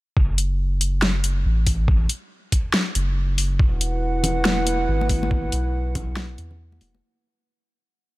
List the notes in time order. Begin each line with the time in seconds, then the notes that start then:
0.17 F#1, kick
0.38 closed hi-hat
0.81 closed hi-hat
1.02 snare
1.24 closed hi-hat
1.45 A1
1.67 kick, open hi-hat
1.88 kick
2.09 closed hi-hat
2.52 kick, closed hi-hat
2.74 snare
2.95 F#1, closed hi-hat
3.38 open hi-hat
3.59 E1 E4 B4 F#5, kick
3.81 closed hi-hat
4.24 closed hi-hat, low conga
4.45 snare, high conga
4.67 closed hi-hat
4.88 G#1
5.01 high conga
5.09 kick, open hi-hat, high conga
5.23 high conga
5.31 kick
5.52 B1, closed hi-hat
5.95 kick, closed hi-hat, low conga
6.17 snare, high conga
6.38 E2, closed hi-hat
6.51 low conga
6.72 high conga
6.81 E1, open hi-hat, high conga
6.94 high conga